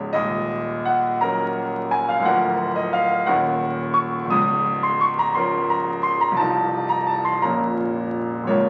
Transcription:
Already playing: C#1 C#2 G#3 C#4 F4 C#5
0.13 D#1 D#2 D#5
0.85 F#5
1.21 F#3 C#4 A#4 A#5
1.91 G#5
2.09 F5
2.20 D1 D2
2.25 F3 D4 A#4 F#5
2.76 D#5
2.93 F5
3.26 D#1 D#2 D#3 C#4 A#4 F#5
3.94 C#6
4.24 C#1
4.30 C#2 D#6
4.83 C6
5.01 C#6
5.19 A#5
5.35 F3 C#4 A#4 C6
5.70 A#5
6.03 C6
6.21 A#5
6.31 C2
6.37 C1 F3 D#4 F4 A5
6.89 A#5
7.07 A5
7.25 C6
7.42 A#0 A#1 A#3 C#4 F4 A#5
8.44 C#1 C#5
8.48 C#2 A#3 C#4 F4

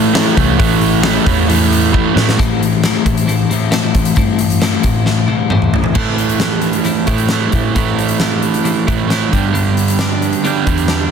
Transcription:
Already playing: A2 E3 A3
0.14 A2 E3 A3, snare, open hi-hat
0.36 C2 A2 E3 A3, kick, open hi-hat
0.58 A1 A2 E3 A3, kick, open hi-hat
0.81 open hi-hat
1.03 A2 E3 A3, snare, open hi-hat
1.25 E2 A2 E3 A3, kick, open hi-hat
1.48 A2 E3 A3, open hi-hat
1.73 open hi-hat
1.93 A2 E3 A3, kick
2.16 A2 E3 A3, snare
2.29 snare
2.37 A2 E3 A3 C4 E4, kick, closed hi-hat
2.61 A2 E3, closed hi-hat
2.82 A2 E3 A3 C4 E4, snare, closed hi-hat
3.04 A2 E3 A3 C4 E4, kick, closed hi-hat
3.17 closed hi-hat
3.26 A2 E3 A3 C4 E4, closed hi-hat
3.31 E3
3.49 A2 E3 A3 C4 E4, closed hi-hat
3.71 A2 E3 A3 C4 E4, snare, closed hi-hat
3.94 A2 E3, kick, closed hi-hat
4.05 closed hi-hat
4.15 G2 A2 E3 A3 C4 E4, kick, closed hi-hat
4.39 A2 E3, closed hi-hat
4.50 closed hi-hat
4.60 A2 E3 A3 C4 E4, snare, closed hi-hat
4.82 A2 A3 C4 E4, kick, closed hi-hat
4.86 E3
5.05 A2 E3 A3 C4 E4, snare
5.27 A2 E3 A3 C4 E4, high tom
5.50 A2 E3 A3 C4 E4, mid tom
5.62 mid tom
5.74 A2 E3, floor tom
5.84 floor tom
5.94 A2 E3 A3 C4 E4, kick, crash
6.18 closed hi-hat
6.29 closed hi-hat
6.39 E3 A3 C4 E4, snare, closed hi-hat
6.62 closed hi-hat
6.73 closed hi-hat
6.84 A2 E3 A3 C4 E4, closed hi-hat
7.07 A2 E3 A3 C4 E4, kick, closed hi-hat
7.18 closed hi-hat
7.29 A2 E3 A3 C4 E4, snare, closed hi-hat
7.33 A3
7.52 A2 A3 C4 E4, kick, closed hi-hat
7.74 A2 E3 A3 C4 E4, kick, closed hi-hat
7.99 closed hi-hat
8.09 closed hi-hat
8.20 E3 A3 C4 E4, snare, closed hi-hat
8.42 closed hi-hat
8.54 closed hi-hat
8.64 A2 E3 A3 C4 E4, closed hi-hat
8.87 A2 E3 A3 C4 E4, kick, closed hi-hat
9.08 A2 E3 A3 C4 E4, snare, closed hi-hat
9.31 G2 D3 G3 B3 D4, kick, closed hi-hat
9.52 G2 D3 G3 B3 D4, closed hi-hat
9.77 closed hi-hat
9.88 closed hi-hat
9.99 D3 G3 B3 D4, snare, closed hi-hat
10.22 closed hi-hat
10.33 closed hi-hat
10.43 G2 D3 G3 B3 D4, closed hi-hat
10.65 E2 D3 G3 B3 D4, kick, closed hi-hat
10.69 G2
10.78 closed hi-hat
10.88 D3 G3 B3 D4, snare, closed hi-hat

